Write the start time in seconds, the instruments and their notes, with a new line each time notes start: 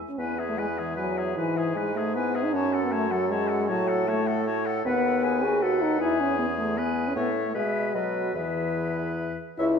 0.09 french horn C#4
0.18 bassoon E2, french horn B3, clarinet E4, oboe B4, flute G#5
0.38 oboe G#4, clarinet G#4, flute E5
0.49 french horn A3
0.58 french horn G#3, clarinet E4, oboe B4, flute G#5
0.78 french horn E3, clarinet G#4, oboe G#4, flute E5
0.97 french horn F#3, clarinet E4, oboe B4, flute G#5
1.17 clarinet G#4, oboe G#4, flute E5
1.36 bassoon G#2, french horn E3, clarinet E4, oboe B4, flute G#5
1.56 clarinet G#4, oboe G#4, flute E5
1.75 french horn G#3, clarinet E4, oboe B4, flute G#5
1.95 french horn A3, clarinet G#4, oboe G#4, flute E5
2.15 french horn B3, clarinet E4, oboe B4, flute G#5
2.35 oboe G#4, clarinet G#4, flute E5
2.45 french horn D#4
2.53 bassoon F#2, french horn C#4, clarinet F#4, oboe C#5, flute A5
2.73 oboe A4, clarinet A4, flute F#5
2.84 french horn B3
2.92 french horn A3, clarinet F#4, oboe C#5, flute A5
3.11 french horn F#3, oboe A4, clarinet A4, flute F#5
3.30 french horn G#3, clarinet F#4, oboe C#5, flute A5
3.48 oboe A4, clarinet A4, flute F#5
3.68 bassoon A2, french horn F#3, clarinet F#4, oboe C#5, flute A5
3.88 oboe A4, clarinet A4, flute F#5
4.07 french horn A3, clarinet F#4, oboe C#5, flute A5
4.27 oboe A4, clarinet A4, flute F#5
4.46 clarinet F#4, oboe C#5, flute A5
4.65 clarinet A4, oboe A4, flute F#5
4.85 bassoon D#2, french horn B3, oboe B4, clarinet B4, flute F#5
5.05 clarinet A4
5.23 clarinet G#4, oboe B4, flute G#5
5.43 clarinet F#4, french horn G#4
5.62 french horn F#4, oboe A4, clarinet B4, flute F#5
5.82 french horn D#4
6.00 bassoon E2, french horn E4, oboe G#4, flute G#5
6.21 french horn C#4
6.39 french horn B3, clarinet G#4
6.58 french horn A3
6.77 french horn B3, clarinet G#4, oboe B4, flute G#5
7.08 french horn C#4
7.16 bassoon A2, french horn B3, clarinet A4, oboe C#5, flute E5
7.46 french horn A3
7.55 bassoon B2, french horn G#3, clarinet G#4, oboe B4, flute E5
7.94 bassoon B2, french horn F#3, clarinet A4, oboe B4, flute D#5
8.35 bassoon E2, french horn E3, clarinet G#4, oboe B4, flute E5
9.58 bassoon C#2, french horn E4, clarinet C#5, flute E5, oboe E5